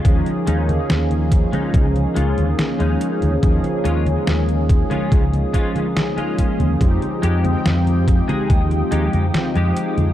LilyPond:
<<
  \new Staff \with { instrumentName = "Ambient pad" } { \time 4/4 \key ees \mixolydian \tempo 4 = 71 << { ees'''1~ | ees'''1~ | ees'''1 | } \\ { <des'' f''>1~ | <des'' f''>1 | <aes f'' g''>1 | } >> }
  \new Staff \with { instrumentName = "Clean electric guitar" } { \time 4/4 \key ees \mixolydian <aes des' f'>16 r16 <aes des' ees'>16 r4 <aes des' ees'>16 r8 <aes des' f'>8 r16 <aes des' ees'>8. | r8 <aes des' f'>16 r4 <aes des' f'>16 r8 <aes des' f'>8 r16 <aes des' f'>8. | r8 <aes ees' g'>16 r4 <aes ees' aes'>16 r8 <aes ees' g'>8 r16 <aes ees' g'>8. | }
  \new Staff \with { instrumentName = "Analog polysynth" } { \time 4/4 \key ees \mixolydian <f bes des' ees' aes'>8. <f bes des' ees' aes'>2.~ <f bes des' ees' aes'>16 | <f bes des' ees' aes'>8. <f aes bes des' ees'>2.~ <f aes bes des' ees'>16 | <f aes c' ees' g'>8. <f aes c' ees' g''>2.~ <f aes c' ees' g''>16 | }
  \new Staff \with { instrumentName = "Fretless electric bass" } { \clef bass \time 4/4 \key ees \mixolydian ees,16 r16 ees,16 r16 ees,8. r16 des,16 r16 des,16 ees,16 r16 ees,16 r16 ees,16 | ees,16 r16 ees,16 r16 ees,8. r16 des,16 r4. ees,16 | f,16 r16 f,16 r16 f,8. r16 ees,16 r16 ees,16 f,16 r16 f,16 r16 f,16 | }
  \new DrumStaff \with { instrumentName = "Drums" } \drummode { \time 4/4 <cgho hh bd>16 <cgho hh>16 hh16 <cgho hh>16 <cgho hh sn>16 <cgho hh>16 <hh bd>16 <cgho hh>16 <cgho hh bd>16 <cgho hh>16 hh16 <cgho hh>16 <cgho hh sn>16 <cgho hh>16 hh16 <cgho hh>16 | <cgho hh bd>16 <cgho hh>16 hh16 <cgho hh>16 <cgho hh sn>16 <cgho hh>16 <hh bd>16 <cgho hh>16 <cgho hh bd>16 <cgho hh>16 <hh bd>16 <cgho hh>16 <cgho hh sn>16 <cgho hh>16 <hh bd>16 <cgho hh>16 | <cgho hh bd>16 <cgho hh>16 hh16 <cgho hh>16 <cgho hh sn>16 <cgho hh>16 <hh bd>16 <cgho hh>16 <cgho hh bd>16 <cgho hh>16 hh16 <cgho hh>16 <cgho hh sn>16 <cgho hh>16 hh16 <cgho hh>16 | }
>>